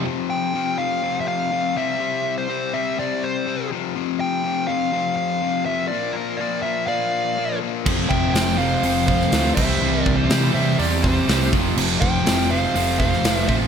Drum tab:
CC |----------------|----------------|----------------|----------------|
HH |----------------|----------------|----------------|----------------|
SD |----------------|----------------|----------------|----------------|
BD |----------------|----------------|----------------|----------------|

CC |x-------------x-|----------------|x---------------|
HH |----o---o---o---|----o---o---o---|----o---o---o---|
SD |----o------oo---|----o-------o---|----o------oo---|
BD |o-o-------o---o-|--o-------o---o-|--o-------o---o-|